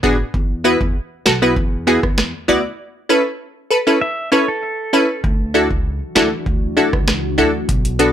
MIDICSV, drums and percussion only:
0, 0, Header, 1, 2, 480
1, 0, Start_track
1, 0, Tempo, 612245
1, 267, Time_signature, 4, 2, 24, 8
1, 6369, End_track
2, 0, Start_track
2, 0, Title_t, "Drums"
2, 27, Note_on_c, 9, 36, 95
2, 106, Note_off_c, 9, 36, 0
2, 267, Note_on_c, 9, 36, 109
2, 345, Note_off_c, 9, 36, 0
2, 633, Note_on_c, 9, 36, 86
2, 711, Note_off_c, 9, 36, 0
2, 987, Note_on_c, 9, 38, 116
2, 991, Note_on_c, 9, 37, 92
2, 1065, Note_off_c, 9, 38, 0
2, 1069, Note_off_c, 9, 37, 0
2, 1226, Note_on_c, 9, 36, 93
2, 1305, Note_off_c, 9, 36, 0
2, 1594, Note_on_c, 9, 36, 99
2, 1594, Note_on_c, 9, 37, 92
2, 1672, Note_off_c, 9, 36, 0
2, 1673, Note_off_c, 9, 37, 0
2, 1707, Note_on_c, 9, 38, 115
2, 1711, Note_on_c, 9, 37, 91
2, 1785, Note_off_c, 9, 38, 0
2, 1789, Note_off_c, 9, 37, 0
2, 4107, Note_on_c, 9, 36, 113
2, 4186, Note_off_c, 9, 36, 0
2, 4473, Note_on_c, 9, 36, 83
2, 4552, Note_off_c, 9, 36, 0
2, 4827, Note_on_c, 9, 38, 115
2, 4831, Note_on_c, 9, 37, 93
2, 4906, Note_off_c, 9, 38, 0
2, 4909, Note_off_c, 9, 37, 0
2, 5067, Note_on_c, 9, 36, 98
2, 5145, Note_off_c, 9, 36, 0
2, 5434, Note_on_c, 9, 36, 99
2, 5435, Note_on_c, 9, 37, 91
2, 5513, Note_off_c, 9, 36, 0
2, 5513, Note_off_c, 9, 37, 0
2, 5548, Note_on_c, 9, 38, 116
2, 5551, Note_on_c, 9, 37, 90
2, 5626, Note_off_c, 9, 38, 0
2, 5630, Note_off_c, 9, 37, 0
2, 6028, Note_on_c, 9, 36, 113
2, 6028, Note_on_c, 9, 42, 73
2, 6106, Note_off_c, 9, 36, 0
2, 6106, Note_off_c, 9, 42, 0
2, 6154, Note_on_c, 9, 42, 53
2, 6233, Note_off_c, 9, 42, 0
2, 6267, Note_on_c, 9, 42, 75
2, 6346, Note_off_c, 9, 42, 0
2, 6369, End_track
0, 0, End_of_file